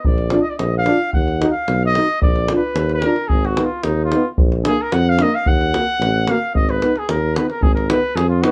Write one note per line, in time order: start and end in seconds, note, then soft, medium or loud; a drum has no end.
0.05 0.36 A#1 medium
0.05 0.43 D5 medium
0.05 davul low medium
0.18 davul high soft
0.30 0.43 D4 medium
0.30 0.43 F4 medium
0.30 davul high medium
0.41 0.51 D#5 medium
0.50 0.59 D5 medium
0.57 0.90 A#1 medium
0.57 0.77 D#5 medium
0.57 davul high medium
0.78 1.12 F5 loud
0.86 0.98 D4 medium
0.86 1.00 F4 medium
0.86 davul high medium
1.13 1.45 D#2 medium
1.13 1.48 F#5 medium
1.13 davul low medium
1.28 davul high soft
1.40 1.52 D#4 medium
1.40 1.53 F#4 medium
1.40 davul high medium
1.50 1.84 F5 medium
1.68 1.98 B1 medium
1.68 davul high medium
1.85 2.20 D#5 loud
1.95 2.07 D#4 medium
1.95 2.08 F#4 medium
1.95 davul high medium
2.22 2.52 A#1 medium
2.22 2.55 D5 medium
2.22 davul low medium
2.36 davul high soft
2.48 2.62 D4 medium
2.48 2.61 F4 medium
2.48 davul high medium
2.55 2.91 B4 medium
2.75 3.05 D#2 medium
2.75 davul high medium
2.89 davul high soft
2.94 3.30 A#4 medium
3.02 3.15 D4 medium
3.02 3.15 F4 medium
3.02 davul high medium
3.16 davul high soft
3.28 3.59 G#1 medium
3.28 3.47 G#4 medium
3.28 davul low medium
3.45 3.66 F#4 medium
3.45 davul high soft
3.57 3.68 B3 soft
3.57 3.68 D#4 soft
3.57 davul high medium
3.64 3.85 F4 medium
3.83 4.14 D#2 medium
3.83 4.02 D#4 medium
3.83 davul high medium
4.04 4.29 F4 medium
4.11 4.24 B3 medium
4.11 4.22 D#4 medium
4.11 davul high medium
4.37 4.67 A#1 medium
4.37 davul low loud
4.52 davul high soft
4.64 4.78 A#3 medium
4.64 4.76 D4 medium
4.64 4.83 G#4 medium
4.64 davul high medium
4.82 4.95 A#4 medium
4.92 5.22 F2 medium
4.92 5.11 F#5 medium
4.92 davul high medium
5.09 5.23 F5 medium
5.18 5.32 A#3 medium
5.18 5.29 D4 medium
5.18 5.36 D#5 loud
5.18 davul high medium
5.35 5.49 F5 medium
5.46 5.76 D#2 medium
5.46 6.32 F#5 loud
5.46 davul low medium
5.61 davul high soft
5.74 5.86 A#3 medium
5.74 5.84 F#4 medium
5.74 davul high medium
5.99 6.29 A1 loud
5.99 davul high medium
6.27 6.39 A#3 medium
6.27 6.39 F#4 medium
6.27 6.54 F5 medium
6.27 davul high medium
6.54 6.83 G#1 medium
6.54 6.71 D#5 medium
6.54 davul low medium
6.69 6.99 B4 medium
6.69 davul high soft
6.82 6.92 B3 medium
6.82 6.94 D#4 medium
6.82 davul high medium
6.96 7.11 G#4 medium
6.96 davul high soft
7.09 7.38 D#2 medium
7.09 7.37 A#4 medium
7.09 davul high medium
7.35 7.47 B3 medium
7.35 7.47 D#4 medium
7.35 7.49 B4 medium
7.35 davul high medium
7.49 7.64 A#4 medium
7.49 davul high soft
7.61 7.91 G#1 medium
7.61 7.74 G#4 medium
7.61 davul low loud
7.75 7.92 A#4 medium
7.75 davul high soft
7.89 8.01 B3 medium
7.89 8.00 D#4 soft
7.89 8.17 B4 medium
7.89 davul high medium
8.15 8.44 F2 medium
8.15 8.28 G#4 medium
8.15 davul high medium
8.29 8.43 F4 medium
8.42 8.52 B3 medium
8.42 8.52 D#4 medium
8.42 8.52 F#4 medium
8.42 davul high medium